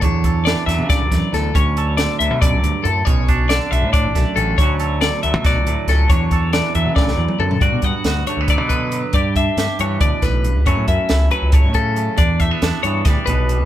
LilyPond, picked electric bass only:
\new Staff \with { instrumentName = "Picked electric bass" } { \clef bass \time 7/8 \key e \dorian \tempo 4 = 138 e,4. e,16 cis8 d,16 e,16 r16 d,8 | d,4. d,16 b,8 cis,16 d,16 r16 fis,8 | b,,4. b,,16 a,8 a,,16 b,,16 r16 a,,8 | d,4. d,16 b,8 cis,16 d,16 r16 cis,8 |
e,4. e,16 cis8 d,16 e,16 r16 fis,8 | g,16 b,16 g,16 r16 d,8 r16 d,8 b,4~ b,16 | g,4 g,16 r16 g,8 d,16 r16 b,,8. cis,16 | fis,16 a,16 fis,16 r16 cis,8 r16 cis,8 a,4~ a,16 |
e,4 e,16 r16 g,8 d,16 r16 b,,8. d,16 | }